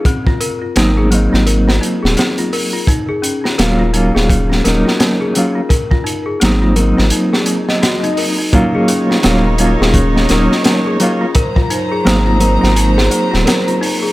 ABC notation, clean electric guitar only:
X:1
M:4/4
L:1/8
Q:"Swing 16ths" 1/4=85
K:Ebdor
V:1 name="Clean electric guitar"
z2 [G,B,CE] [G,B,CE]4- [G,B,CE] | z2 [G,B,DF] [G,B,DF]2 [G,B,DE]2 [G,B,DF] | z2 [G,B,CE] [G,B,CE]4- [G,B,CE] | [G,B,DF]2 [G,B,DF] [G,B,DF]2 [G,B,DE]2 [G,B,DF] |
z2 [G,B,CE] [G,B,CE]4- [G,B,CE] |]